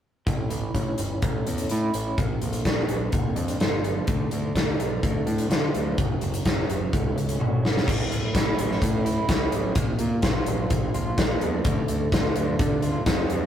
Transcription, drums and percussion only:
0.27 kick medium
0.27 closed hi-hat soft
0.50 closed hi-hat medium
0.75 kick medium
0.75 closed hi-hat soft
0.98 closed hi-hat medium
1.22 kick medium
1.22 closed hi-hat medium
1.47 closed hi-hat soft
1.58 closed hi-hat medium
1.69 closed hi-hat medium
1.94 closed hi-hat medium
2.18 kick medium
2.18 closed hi-hat medium
2.42 closed hi-hat medium
2.53 closed hi-hat medium
2.65 kick medium
2.65 snare medium
2.65 closed hi-hat soft
2.89 closed hi-hat medium
3.12 kick medium
3.12 closed hi-hat soft
3.36 closed hi-hat soft
3.48 closed hi-hat soft
3.60 snare medium
3.60 closed hi-hat medium
3.84 closed hi-hat soft
4.07 kick medium
4.07 closed hi-hat medium
4.31 closed hi-hat soft
4.56 kick medium
4.56 snare loud
4.56 closed hi-hat soft
4.80 closed hi-hat medium
5.03 kick medium
5.03 closed hi-hat medium
5.27 closed hi-hat soft
5.38 closed hi-hat medium
5.51 snare medium
5.51 closed hi-hat medium
5.75 closed hi-hat medium
5.98 kick loud
5.98 closed hi-hat medium
6.21 closed hi-hat medium
6.34 closed hi-hat medium
6.45 kick medium
6.45 snare medium
6.45 closed hi-hat soft
6.70 closed hi-hat medium
6.93 kick medium
6.93 closed hi-hat medium
7.18 closed hi-hat soft
7.29 closed hi-hat soft
7.41 high tom soft
7.65 snare medium
7.77 snare medium
7.88 kick loud
7.88 crash medium
8.12 closed hi-hat medium
8.35 kick medium
8.35 snare loud
8.35 closed hi-hat medium
8.59 closed hi-hat medium
8.71 snare soft
8.82 kick loud
8.82 closed hi-hat medium
9.06 closed hi-hat medium
9.29 kick loud
9.29 snare loud
9.29 closed hi-hat medium
9.52 closed hi-hat medium
9.75 kick loud
9.75 closed hi-hat medium
9.99 closed hi-hat medium
10.22 kick loud
10.22 snare medium
10.22 closed hi-hat medium
10.46 closed hi-hat medium
10.70 kick medium
10.70 closed hi-hat medium
10.94 closed hi-hat medium
11.18 kick loud
11.18 snare loud
11.18 closed hi-hat medium
11.41 closed hi-hat medium
11.65 kick loud
11.65 closed hi-hat medium
11.88 closed hi-hat medium
12.12 kick loud
12.12 snare medium
12.12 closed hi-hat medium
12.36 closed hi-hat medium
12.59 kick loud
12.59 closed hi-hat medium
12.82 closed hi-hat soft
13.06 kick loud
13.06 snare loud
13.06 closed hi-hat medium
13.30 closed hi-hat medium

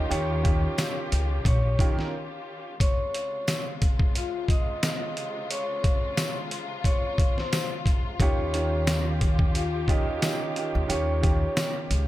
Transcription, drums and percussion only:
0.12 closed hi-hat medium
0.45 kick medium
0.45 closed hi-hat medium
0.78 snare loud
0.78 closed hi-hat loud
0.78 tambourine medium
1.12 closed hi-hat medium
1.45 kick medium
1.45 closed hi-hat medium
1.79 kick loud
1.79 closed hi-hat medium
1.99 snare soft
2.80 kick loud
2.80 closed hi-hat loud
3.14 closed hi-hat medium
3.47 snare loud
3.47 closed hi-hat loud
3.47 tambourine medium
3.82 kick loud
3.82 closed hi-hat medium
3.99 kick medium
4.15 closed hi-hat medium
4.48 kick loud
4.48 closed hi-hat medium
4.83 snare loud
4.83 closed hi-hat medium
4.83 tambourine medium
5.17 closed hi-hat medium
5.51 closed hi-hat loud
5.84 kick medium
5.84 closed hi-hat medium
6.17 snare loud
6.17 closed hi-hat loud
6.17 tambourine medium
6.51 closed hi-hat medium
6.84 kick medium
6.84 closed hi-hat medium
7.18 kick loud
7.18 closed hi-hat medium
7.38 snare soft
7.53 snare loud
7.53 closed hi-hat medium
7.53 tambourine medium
7.86 kick loud
7.86 closed hi-hat medium
8.20 kick loud
8.20 closed hi-hat loud
8.54 closed hi-hat medium
8.87 snare loud
8.87 closed hi-hat loud
8.87 tambourine medium
9.21 kick medium
9.21 closed hi-hat medium
9.39 kick medium
9.55 closed hi-hat medium
9.88 kick loud
9.88 closed hi-hat medium
10.22 snare loud
10.22 closed hi-hat medium
10.22 tambourine medium
10.56 closed hi-hat medium
10.90 closed hi-hat loud
11.23 kick medium
11.23 closed hi-hat medium
11.57 snare loud
11.57 closed hi-hat loud
11.57 tambourine medium
11.91 closed hi-hat medium

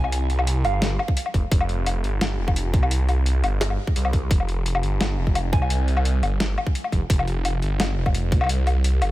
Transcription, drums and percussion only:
0.04 low woodblock medium
0.12 closed hi-hat medium
0.30 closed hi-hat soft
0.39 low woodblock medium
0.47 closed hi-hat medium
0.65 closed hi-hat soft
0.65 low woodblock medium
0.82 snare loud
0.82 closed hi-hat medium
0.99 low woodblock medium
1.08 kick medium
1.17 closed hi-hat medium
1.26 low woodblock medium
1.34 kick medium
1.34 closed hi-hat soft
1.52 kick loud
1.52 closed hi-hat medium
1.61 low woodblock medium
1.69 closed hi-hat soft
1.86 closed hi-hat medium
1.86 low woodblock medium
2.04 closed hi-hat soft
2.21 snare loud
2.21 closed hi-hat medium
2.21 low woodblock medium
2.48 kick medium
2.48 low woodblock medium
2.56 closed hi-hat medium
2.74 kick loud
2.74 closed hi-hat soft
2.83 low woodblock medium
2.91 closed hi-hat medium
3.09 closed hi-hat soft
3.09 low woodblock soft
3.26 closed hi-hat medium
3.44 closed hi-hat soft
3.44 low woodblock medium
3.61 snare loud
3.61 closed hi-hat medium
3.70 low woodblock medium
3.87 kick medium
3.96 closed hi-hat medium
4.05 low woodblock medium
4.13 kick medium
4.13 closed hi-hat soft
4.31 kick loud
4.31 closed hi-hat medium
4.40 low woodblock soft
4.49 closed hi-hat soft
4.66 closed hi-hat medium
4.75 low woodblock medium
4.83 closed hi-hat soft
5.01 snare loud
5.01 closed hi-hat medium
5.01 low woodblock medium
5.27 kick medium
5.35 closed hi-hat medium
5.35 low woodblock medium
5.53 kick loud
5.53 closed hi-hat soft
5.62 low woodblock medium
5.70 closed hi-hat medium
5.88 closed hi-hat soft
5.97 low woodblock medium
6.05 closed hi-hat medium
6.23 closed hi-hat soft
6.23 low woodblock medium
6.40 snare loud
6.40 closed hi-hat medium
6.58 low woodblock medium
6.67 kick medium
6.75 closed hi-hat medium
6.84 low woodblock soft
6.92 kick medium
6.92 closed hi-hat soft
7.10 kick loud
7.10 closed hi-hat medium
7.19 low woodblock medium
7.28 closed hi-hat soft
7.45 closed hi-hat medium
7.45 low woodblock medium
7.62 closed hi-hat soft
7.80 snare loud
7.80 closed hi-hat medium
7.80 low woodblock medium
8.06 kick medium
8.06 low woodblock medium
8.15 closed hi-hat medium
8.32 kick loud
8.32 closed hi-hat soft
8.41 low woodblock medium
8.44 low woodblock medium
8.47 closed hi-hat medium
8.47 low woodblock medium
8.67 closed hi-hat soft
8.67 low woodblock medium
8.84 closed hi-hat medium
9.02 closed hi-hat soft
9.02 low woodblock medium

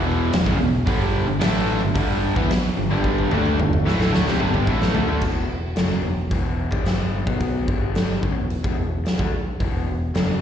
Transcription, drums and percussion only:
0.33 snare loud
0.33 open hi-hat medium
0.46 kick loud
0.87 kick loud
0.87 open hi-hat medium
1.41 snare loud
1.41 open hi-hat medium
1.96 kick loud
1.96 open hi-hat medium
2.36 kick medium
2.50 snare medium
2.50 open hi-hat medium
3.04 kick medium
3.18 high tom medium
3.31 high tom medium
3.45 high tom medium
3.59 mid tom medium
3.73 mid tom medium
3.87 snare medium
4.01 snare medium
4.14 snare medium
4.28 snare medium
4.40 mid tom medium
4.54 mid tom medium
4.67 kick medium
4.82 snare medium
4.95 floor tom medium
5.08 floor tom medium
5.22 kick medium
5.22 crash medium
5.76 snare loud
5.76 open hi-hat soft
6.31 kick medium
6.31 open hi-hat soft
6.72 kick medium
6.85 snare medium
6.85 open hi-hat soft
7.27 kick medium
7.40 kick medium
7.40 open hi-hat soft
7.68 kick medium
7.95 snare medium
7.95 open hi-hat soft
8.23 kick medium
8.50 open hi-hat soft
8.64 kick medium
9.06 snare medium
9.06 open hi-hat soft
9.19 kick medium
9.60 kick medium
9.60 open hi-hat soft
10.15 snare loud
10.15 open hi-hat soft

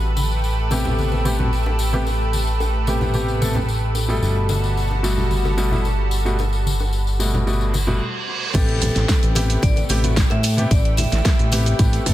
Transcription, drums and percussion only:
0.17 tambourine medium
0.17 high bongo soft
0.17 high conga medium
0.31 tambourine soft
0.44 tambourine soft
0.71 tambourine medium
0.71 high bongo medium
0.85 tambourine soft
0.85 low conga medium
0.98 tambourine soft
0.98 high conga medium
1.12 tambourine soft
1.12 high bongo soft
1.12 high conga medium
1.25 tambourine medium
1.39 tambourine soft
1.39 low conga medium
1.53 tambourine soft
1.66 high bongo medium
1.79 tambourine medium
1.94 tambourine soft
2.07 tambourine soft
2.07 high bongo soft
2.33 tambourine medium
2.33 high conga soft
2.47 tambourine soft
2.60 tambourine medium
2.60 high bongo medium
2.87 tambourine medium
3.01 tambourine soft
3.01 high bongo soft
3.01 low conga medium
3.14 tambourine medium
3.28 tambourine soft
3.42 tambourine medium
3.42 high conga medium
3.55 tambourine soft
3.55 high bongo medium
3.55 low conga medium
3.69 tambourine soft
3.95 tambourine medium
3.95 high bongo soft
4.09 tambourine soft
4.22 tambourine medium
4.49 tambourine medium
4.49 high bongo medium
4.49 high conga medium
4.64 tambourine soft
4.77 tambourine soft
4.91 high bongo soft
5.04 tambourine medium
5.18 tambourine soft
5.18 low conga medium
5.31 tambourine medium
5.31 high conga medium
5.45 tambourine soft
5.45 high bongo medium
5.45 high conga medium
5.58 tambourine medium
5.72 tambourine soft
5.72 low conga medium
5.85 tambourine soft
5.85 high bongo medium
6.11 tambourine medium
6.26 tambourine soft
6.39 tambourine soft
6.39 high bongo medium
6.53 tambourine soft
6.66 tambourine medium
6.66 high conga medium
6.80 tambourine soft
6.80 high bongo medium
6.93 tambourine soft
7.07 tambourine soft
7.20 tambourine medium
7.34 tambourine soft
7.34 high bongo medium
7.34 low conga medium
7.47 tambourine soft
7.61 tambourine soft
7.74 tambourine medium
7.74 high bongo medium
7.74 high conga medium
7.88 tambourine soft
7.88 low conga medium
8.55 kick loud
8.55 closed hi-hat medium
8.55 crash loud
8.55 tambourine medium
8.55 shaker soft
8.69 closed hi-hat soft
8.81 open hi-hat loud
8.81 tambourine medium
8.81 high bongo medium
8.81 low conga loud
8.81 shaker medium
8.96 snare soft
8.96 closed hi-hat soft
8.96 tambourine soft
8.96 shaker soft
9.09 kick loud
9.09 snare loud
9.09 closed hi-hat medium
9.09 tambourine soft
9.09 shaker soft
9.23 closed hi-hat soft
9.23 shaker soft
9.35 open hi-hat loud
9.35 tambourine medium
9.35 high bongo medium
9.35 shaker medium
9.50 closed hi-hat soft
9.50 tambourine soft
9.50 shaker soft
9.62 kick loud
9.62 closed hi-hat medium
9.62 tambourine medium
9.62 high conga medium
9.62 shaker soft
9.76 closed hi-hat soft
9.76 tambourine soft
9.76 high bongo medium
9.76 high conga medium
9.89 open hi-hat loud
9.89 tambourine medium
9.89 shaker medium
10.03 closed hi-hat soft
10.03 tambourine soft
10.03 low conga medium
10.03 shaker soft
10.17 kick loud
10.17 snare loud
10.17 closed hi-hat medium
10.17 tambourine medium
10.17 shaker soft
10.30 closed hi-hat soft
10.30 high bongo medium
10.43 open hi-hat loud
10.43 tambourine medium
10.43 shaker medium
10.58 closed hi-hat soft
10.58 tambourine soft
10.58 shaker soft
10.71 kick loud
10.71 closed hi-hat medium
10.71 tambourine soft
10.71 high bongo medium
10.71 shaker soft
10.85 closed hi-hat soft
10.97 open hi-hat loud
10.97 tambourine loud
10.97 high conga medium
10.97 low conga loud
10.97 shaker medium
11.11 snare soft
11.11 closed hi-hat soft
11.11 tambourine soft
11.11 shaker soft
11.25 kick loud
11.25 snare loud
11.25 closed hi-hat medium
11.25 tambourine medium
11.25 high bongo medium
11.25 shaker soft
11.39 closed hi-hat soft
11.39 shaker soft
11.52 open hi-hat loud
11.52 tambourine medium
11.52 shaker medium
11.66 closed hi-hat soft
11.66 tambourine soft
11.66 high bongo medium
11.66 shaker soft
11.79 kick loud
11.79 closed hi-hat medium
11.79 tambourine medium
11.79 shaker soft
11.93 closed hi-hat soft
11.93 tambourine soft
11.93 shaker soft
12.06 kick medium
12.06 open hi-hat loud
12.06 tambourine medium
12.06 high conga medium
12.06 shaker medium

